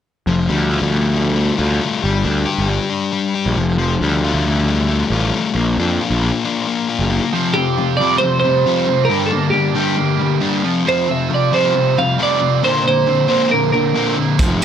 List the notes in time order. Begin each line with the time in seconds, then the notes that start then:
0.27 F1 F3
0.49 D2 G3
0.71 F4
0.82 D2
0.93 A3
1.15 G3
1.36 A3
1.58 D2 F4
1.81 A3
2.03 G1 G3
2.24 D2 D4
2.46 G4
2.58 G1
2.69 G3
2.90 D4
3.13 G3
3.35 G4
3.46 A#1
3.57 F1 F3
3.78 F3
4.01 D2 G3
4.24 F4
4.34 D2
4.46 A3
4.68 G3
4.90 A3
5.10 A1 F4
5.35 A3
5.55 A#1 A#3
5.78 F2 D4
6.01 F4
6.10 A#1
6.23 A#3
6.45 D4
6.67 A#3
6.89 F4
6.99 F#1
7.11 A#3
7.33 F2 C3 F3
7.54 F2 C3 C4 G4
7.77 F2 C3 F4
7.97 F2 G3 D5
8.01 C3 F3
8.18 C4 C5
8.23 F2 C3
8.40 C5
8.44 F2 C3 G3
8.66 F2 C3 F3 F4
8.87 F2 C3 C4
9.05 A#4
9.09 G2 D3 G3
9.26 A#3 A4
9.32 G2 D3
9.50 G2 D3 D4 G4
9.75 G2 D3 G3
9.96 G2 D3 A#3
10.17 G2 D3 G3
10.40 G2 D3 G3 D4
10.63 F2 C3 F3
10.85 F2 C3 F3 C5
11.07 F2 C3 C4
11.11 E5
11.29 F2 C3 F4
11.34 D5
11.51 F2 C3 F3 G3 C5
11.73 F2 C3 C4
11.96 F2 C3 G3 F5
12.18 F2 C3 F3 F4
12.23 D5
12.40 F2 C3 C4
12.63 A#2 D3 A#3 C5
12.84 A#2 D3 A#3 C5
13.06 A#2 D3 C4
13.28 A#2 D3 A#3 C5
13.51 A#2 D3 A#3 A#4
13.72 A#2 D3 A#4
13.95 A#2 D3 A#3 C4
14.18 A#2 D3 A#3
14.39 F1 F2 C3 F3, kick, closed hi-hat